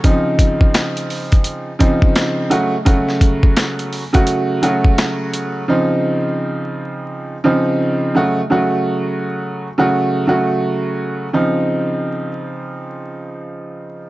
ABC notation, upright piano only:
X:1
M:4/4
L:1/16
Q:"Swing 16ths" 1/4=85
K:Db
V:1 name="Upright piano" clef=bass
[D,F,CE]8- [D,F,CE] z [D,F,CE]4 [D,G,=A,G] z | [D,G,=A,G]6 z [D,G,A,G]3 [D,G,A,G]6 | [D,F,CE]8- [D,F,CE] z [D,F,CE]4 [D,G,=A,G] z | [D,G,=A,G]6 z [D,G,A,G]3 [D,G,A,G]6 |
[D,F,CE]16 |]